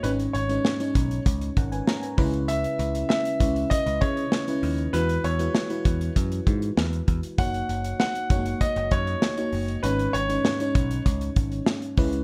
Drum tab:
HH |xxxx-xxxxxxx-xox|xxxx-xxxxxxx-xox|xxxx-xxxxxxx-xxx|xxxx-xxxxxxx-xox|
SD |----o-------o---|----o-------o---|----o-------o---|----o-------o---|
BD |------o-o-o---o-|------o-o-o-----|------o-o-o---o-|o-----o-o-o-----|

HH |xxxx-xxxxxxx-xox|
SD |----o-------o---|
BD |------o-o-o---o-|